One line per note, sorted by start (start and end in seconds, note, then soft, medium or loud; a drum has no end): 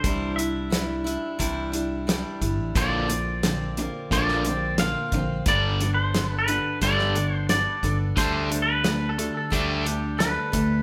0.00 0.36 C5 medium
0.04 1.16 C2 loud
0.04 0.38 C3 medium
0.04 0.38 E3 medium
0.04 0.39 G3 medium
0.04 0.38 D4 medium
0.04 0.37 E4 medium
0.04 kick loud
0.04 closed hi-hat medium
0.36 0.70 D4 soft
0.36 0.71 E4 medium
0.36 1.68 E5 medium
0.36 closed hi-hat medium
0.40 0.70 G3 soft
0.70 1.05 E3 medium
0.70 1.06 G3 medium
0.70 1.05 D4 medium
0.70 1.03 E4 medium
0.70 snare loud
0.70 closed hi-hat medium
1.04 1.38 G3 soft
1.04 1.39 D4 soft
1.04 1.39 E4 medium
1.04 closed hi-hat medium
1.39 2.23 C2 medium
1.39 1.73 C3 medium
1.39 1.74 E3 medium
1.39 1.73 G3 medium
1.39 1.73 D4 medium
1.39 1.71 E4 medium
1.39 kick medium
1.39 closed hi-hat medium
1.72 2.06 G3 soft
1.72 2.07 D4 soft
1.72 2.07 E4 medium
1.72 closed hi-hat medium
2.07 2.41 E3 medium
2.07 2.41 G3 medium
2.07 2.41 D4 medium
2.07 2.40 E4 medium
2.07 snare loud
2.07 closed hi-hat medium
2.41 2.57 G1 medium
2.41 2.75 G3 soft
2.41 2.76 D4 soft
2.41 2.75 E4 medium
2.41 kick medium
2.41 closed hi-hat medium
2.58 2.73 A1 medium
2.75 3.87 A#1 medium
2.75 3.09 A#2 medium
2.75 3.08 A#2 medium
2.75 3.09 D3 medium
2.75 3.08 D3 medium
2.75 3.08 F3 loud
2.75 3.09 A#3 medium
2.75 3.08 C4 medium
2.75 3.07 F4 medium
2.75 4.12 D5 medium
2.75 kick loud
2.75 closed hi-hat medium
3.08 3.40 A#2 medium
3.08 3.40 D3 medium
3.08 3.43 A#3 soft
3.08 3.43 C4 soft
3.08 3.42 F4 medium
3.08 closed hi-hat medium
3.43 3.74 A#2 medium
3.43 3.77 D3 medium
3.43 3.74 D3 medium
3.43 3.77 A#3 medium
3.43 3.78 C4 medium
3.43 3.78 F4 medium
3.43 snare loud
3.43 closed hi-hat medium
3.77 4.08 A#2 medium
3.77 4.08 D3 medium
3.77 4.13 C4 medium
3.77 4.12 F4 medium
3.77 closed hi-hat soft
3.82 4.12 A#3 medium
4.11 4.94 A#1 medium
4.11 4.43 A#2 medium
4.11 4.45 A#2 medium
4.11 4.43 D3 medium
4.11 4.46 D3 medium
4.11 4.43 F3 medium
4.11 4.46 A#3 medium
4.11 4.46 C4 medium
4.11 4.46 F4 medium
4.11 4.79 D5 loud
4.11 kick medium
4.11 closed hi-hat medium
4.28 snare soft
4.45 4.76 A#2 medium
4.45 4.76 D3 medium
4.45 4.80 F4 medium
4.45 closed hi-hat medium
4.49 4.79 A#3 soft
4.49 4.79 C4 medium
4.78 5.10 A#2 medium
4.78 5.13 D3 medium
4.78 5.10 D3 medium
4.78 5.13 A#3 medium
4.78 5.13 C4 medium
4.78 5.48 F5 loud
4.78 snare loud
4.78 closed hi-hat medium
4.82 5.13 F4 medium
5.12 5.40 A#1 medium
5.12 5.43 A#2 medium
5.12 5.43 D3 medium
5.12 5.47 C4 medium
5.12 5.47 F4 soft
5.12 kick medium
5.12 closed hi-hat medium
5.17 5.47 A#3 soft
5.46 6.57 G1 medium
5.46 5.78 G2 medium
5.46 5.79 D3 medium
5.46 5.80 G3 medium
5.46 5.79 G3 medium
5.46 5.80 B3 medium
5.46 5.81 D4 medium
5.46 5.80 A4 medium
5.46 5.94 D5 loud
5.46 kick loud
5.46 closed hi-hat medium
5.80 6.11 G2 medium
5.80 6.11 D3 medium
5.80 6.15 D4 soft
5.80 6.15 A4 medium
5.80 snare soft
5.80 closed hi-hat medium
5.85 6.14 B3 soft
5.94 6.38 C5 medium
6.14 6.45 G2 medium
6.14 6.45 D3 medium
6.14 6.48 G3 medium
6.14 6.49 B3 medium
6.14 6.48 D4 medium
6.14 6.46 A4 medium
6.14 snare medium
6.14 closed hi-hat medium
6.39 6.80 B4 medium
6.47 6.79 G2 medium
6.47 6.79 D3 medium
6.47 6.81 B3 soft
6.47 6.81 D4 soft
6.47 6.81 A4 medium
6.47 closed hi-hat medium
6.81 7.65 G1 medium
6.81 7.14 G2 medium
6.81 7.14 D3 medium
6.81 7.15 G3 medium
6.81 7.16 B3 medium
6.81 7.15 D4 medium
6.81 7.13 A4 medium
6.81 7.35 D5 medium
6.81 kick medium
6.81 closed hi-hat medium
6.99 snare soft
7.14 7.46 G2 medium
7.14 7.47 D3 medium
7.14 7.49 B3 soft
7.14 7.50 D4 soft
7.14 7.49 A4 medium
7.14 closed hi-hat medium
7.35 7.49 C5 medium
7.49 7.80 G2 medium
7.49 7.80 D3 medium
7.49 7.83 G3 medium
7.49 7.84 B3 medium
7.49 7.84 D4 medium
7.49 7.83 A4 medium
7.49 7.97 D5 medium
7.49 snare loud
7.49 closed hi-hat medium
7.83 8.11 G1 medium
7.83 8.14 G2 medium
7.83 8.14 D3 medium
7.83 8.17 B3 soft
7.83 8.17 D4 soft
7.83 8.17 A4 soft
7.83 kick medium
7.83 closed hi-hat medium
8.16 9.29 D2 medium
8.16 8.48 D3 medium
8.16 8.51 D3 medium
8.16 8.50 G3 medium
8.16 8.49 A3 medium
8.16 8.49 D4 medium
8.16 8.48 A4 medium
8.16 8.60 C5 loud
8.16 kick loud
8.16 closed hi-hat medium
8.49 8.82 D3 medium
8.49 8.83 G3 soft
8.49 8.82 A3 medium
8.49 8.84 D4 soft
8.49 8.84 A4 medium
8.49 closed hi-hat medium
8.62 9.09 B4 medium
8.84 9.18 D3 medium
8.84 9.15 D3 medium
8.84 9.18 G3 medium
8.84 9.15 A3 medium
8.84 9.18 D4 medium
8.84 9.18 A4 medium
8.84 snare loud
8.84 closed hi-hat medium
9.09 9.36 A4 medium
9.18 9.49 D3 medium
9.18 9.50 G3 soft
9.18 9.49 A3 medium
9.18 9.51 D4 soft
9.18 9.50 A4 medium
9.18 closed hi-hat medium
9.37 9.53 A4 medium
9.50 10.36 D2 medium
9.50 9.85 D3 medium
9.50 9.84 D3 medium
9.50 9.86 G3 medium
9.50 9.84 A3 medium
9.50 9.84 D4 medium
9.50 9.85 D4 loud
9.50 10.23 G4 medium
9.50 9.83 A4 medium
9.50 kick medium
9.50 closed hi-hat medium
9.84 10.17 D3 medium
9.84 10.18 G3 soft
9.84 10.17 A3 medium
9.84 10.19 D4 medium
9.84 10.19 A4 medium
9.84 closed hi-hat medium
10.18 10.53 D3 medium
10.18 10.50 D3 medium
10.18 10.52 G3 medium
10.18 10.51 A3 medium
10.18 10.52 D4 medium
10.18 10.51 A4 medium
10.18 10.82 B4 medium
10.18 snare loud
10.18 closed hi-hat medium
10.52 10.82 D2 medium
10.52 10.82 D3 medium
10.52 10.82 G3 soft
10.52 10.82 A3 medium
10.52 10.82 D4 soft
10.52 10.82 A4 soft
10.52 kick medium
10.52 closed hi-hat medium